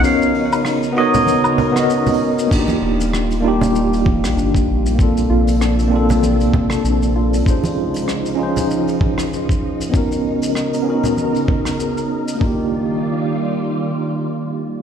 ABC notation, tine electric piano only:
X:1
M:4/4
L:1/16
Q:"Swing 16ths" 1/4=97
K:Eblyd
V:1 name="Tine electric piano"
[=B,^D^F^A^c]6 [B,DFAc]4- [B,DFAc] [B,DFA^d]4- [B,DFAd] | [B,DEFG]6 [B,DEFG]8- [B,DEFG]2 | [B,CDFA]6 [B,CDFA]8- [B,CDFA]2 | [_DEF_Ac]6 [DEFAc]8- [DEFAc]2 |
[=B,^C^D^F^A]6 [B,CDFA]8- [B,CDFA]2 | [B,DEFG]16 |]